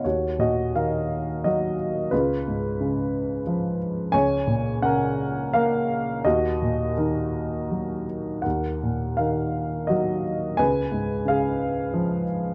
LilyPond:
<<
  \new Staff \with { instrumentName = "Upright piano" } { \time 3/4 \key ees \minor \tempo 4 = 86 <ges' des''>8 <ges' ees''>8 <bes' f''>4 <ges' ees''>4 | <f' ces''>2 r4 | <des'' aes''>4 <bes' ges''>4 <bes' f''>4 | <ges' ees''>4 <ees' bes'>4. r8 |
<bes' ges''>4 <bes' f''>4 <ges' ees''>4 | <ces'' aes''>4 <aes' f''>4. r8 | }
  \new Staff \with { instrumentName = "Upright piano" } { \clef bass \time 3/4 \key ees \minor ees,8 bes,8 ees4 ges4 | des,8 aes,8 des4 f4 | des,8 bes,8 des4 bes4 | ees,8 bes,8 ees4 ges4 |
ees,8 bes,8 ees4 ges4 | des,8 aes,8 des4 f4 | }
>>